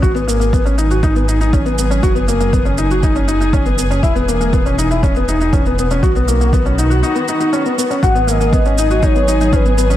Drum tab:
SH |xxxxxxxxxxxxxxxx|xxxxxxxxxxxxxxxx|xxxxxxxxxxxxxxxx|xxxxxxxxxxxxxxxx|
BD |o---o---o---o---|o---o---o---o---|o---o---o---o---|o---o-----------|

SH |xxxxxxxxxxxxxxxx|
BD |o---o---o---o---|